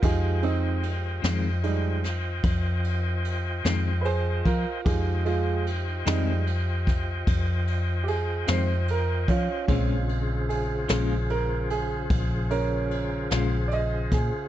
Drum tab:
RD |xxxxxxxxxxxx|xxxxxxxxxxxx|xxxxxxxxxxxx|
SD |---o-o---o--|---o-o---o--|---o-----o-o|
BD |o-----o----o|o----oo----o|o-----o----o|